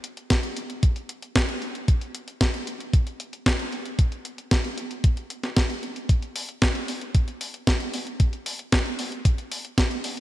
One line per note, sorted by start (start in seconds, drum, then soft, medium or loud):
0.04 closed hi-hat medium
0.17 closed hi-hat soft
0.30 kick loud
0.30 snare loud
0.30 closed hi-hat medium
0.43 closed hi-hat soft
0.57 closed hi-hat medium
0.70 closed hi-hat soft
0.83 kick loud
0.83 closed hi-hat medium
0.96 closed hi-hat soft
1.09 closed hi-hat medium
1.22 closed hi-hat soft
1.36 kick loud
1.36 snare loud
1.36 closed hi-hat medium
1.49 closed hi-hat soft
1.62 closed hi-hat soft
1.75 closed hi-hat soft
1.88 kick loud
1.88 closed hi-hat medium
2.01 closed hi-hat soft
2.15 closed hi-hat medium
2.28 closed hi-hat soft
2.41 kick loud
2.41 snare loud
2.41 closed hi-hat medium
2.54 closed hi-hat soft
2.67 closed hi-hat medium
2.80 closed hi-hat soft
2.93 kick loud
2.93 closed hi-hat medium
3.07 closed hi-hat soft
3.20 closed hi-hat medium
3.33 closed hi-hat soft
3.46 kick loud
3.46 snare loud
3.46 closed hi-hat medium
3.59 closed hi-hat soft
3.72 closed hi-hat soft
3.86 closed hi-hat soft
3.99 kick loud
3.99 closed hi-hat medium
4.12 closed hi-hat soft
4.25 closed hi-hat medium
4.38 closed hi-hat soft
4.51 kick loud
4.51 snare loud
4.51 closed hi-hat medium
4.65 closed hi-hat soft
4.78 closed hi-hat medium
4.91 closed hi-hat soft
5.04 kick loud
5.04 closed hi-hat medium
5.17 closed hi-hat soft
5.30 closed hi-hat medium
5.43 snare soft
5.43 closed hi-hat soft
5.57 kick loud
5.57 snare loud
5.57 closed hi-hat medium
5.70 closed hi-hat soft
5.83 closed hi-hat soft
5.96 closed hi-hat soft
6.09 kick loud
6.09 closed hi-hat medium
6.22 closed hi-hat soft
6.36 open hi-hat loud
6.49 closed hi-hat soft
6.62 kick loud
6.62 snare loud
6.62 closed hi-hat medium
6.75 closed hi-hat soft
6.88 open hi-hat medium
7.01 closed hi-hat soft
7.15 kick loud
7.15 closed hi-hat medium
7.28 closed hi-hat soft
7.41 open hi-hat medium
7.54 closed hi-hat soft
7.67 kick loud
7.67 snare loud
7.67 closed hi-hat medium
7.80 closed hi-hat soft
7.94 open hi-hat medium
8.07 closed hi-hat soft
8.20 kick loud
8.20 closed hi-hat medium
8.33 closed hi-hat soft
8.46 open hi-hat loud
8.59 closed hi-hat soft
8.72 kick loud
8.72 snare loud
8.72 closed hi-hat medium
8.86 closed hi-hat soft
8.99 open hi-hat medium
9.12 closed hi-hat soft
9.25 kick loud
9.25 closed hi-hat medium
9.38 closed hi-hat soft
9.52 open hi-hat loud
9.65 closed hi-hat soft
9.78 kick loud
9.78 snare loud
9.78 closed hi-hat medium
9.91 closed hi-hat soft
10.04 open hi-hat medium